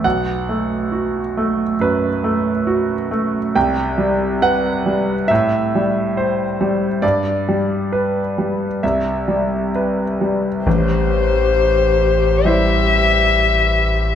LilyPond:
<<
  \new Staff \with { instrumentName = "Violin" } { \time 4/4 \key a \dorian \tempo 4 = 68 r1 | r1 | r1 | c''2 e''2 | }
  \new Staff \with { instrumentName = "Viola" } { \time 4/4 \key a \dorian r1 | r1 | r1 | g'1 | }
  \new Staff \with { instrumentName = "Grand piano" } { \time 4/4 \key a \dorian fis''2 b'4. r8 | g''4 fis''4 e''2 | d''2 e''4 r4 | r1 | }
  \new Staff \with { instrumentName = "Grand piano" } { \clef bass \time 4/4 \key a \dorian b,,8 a8 fis'8 a8 fis,8 a8 fis'8 a8 | c,8 g8 b'8 g8 a,8 g8 c''8 g8 | g,8 g8 b'8 g8 c,8 g8 b'8 g8 | a,,2 <g e' c''>2 | }
  \new Staff \with { instrumentName = "Sub bass" } { \clef bass \time 4/4 \key a \dorian r1 | r1 | r1 | a,,1 | }
>>